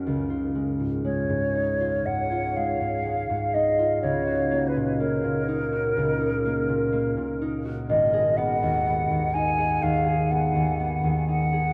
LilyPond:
<<
  \new Staff \with { instrumentName = "Flute" } { \time 4/4 \key cis \mixolydian \tempo 4 = 62 r4 cis''4 fis''8 eis''4 dis''8 | \tuplet 3/2 { cis''4 b'8 } ais'2~ ais'8 r8 | dis''8 fis''4 gis''8 eis''8 fis''4 fis''8 | }
  \new Staff \with { instrumentName = "Harp" } { \time 4/4 \key cis \mixolydian <cis, cis' dis'>16 eis'16 gis16 gis,16 gis16 gis,16 dis'16 eis'16 gis,16 eis'16 gis16 gis,16 gis16 gis,16 dis'16 eis'16 | cis,16 fis'16 ais16 ais,16 ais16 ais,16 dis'16 fis'16 cis,16 dis'16 ais16 ais,16 ais16 ais,16 dis'16 fis'16 | gis,,16 gis'16 b16 dis,16 b16 dis,16 dis'16 gis'16 dis,16 gis'16 b16 dis,16 b16 dis,16 dis'16 gis'16 | }
>>